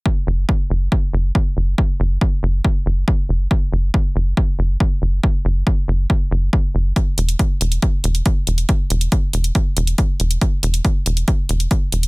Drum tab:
HH |----------------|----------------|----------------|----------------|
BD |o---o---o---o---|o---o---o---o---|o---o---o---o---|o---o---o---o---|

HH |x-xxx-xxx-xxx-xx|x-xxx-xxx-xxx-xx|x-xxx-xxx-xxx-xx|
BD |o---o---o---o---|o---o---o---o---|o---o---o---o---|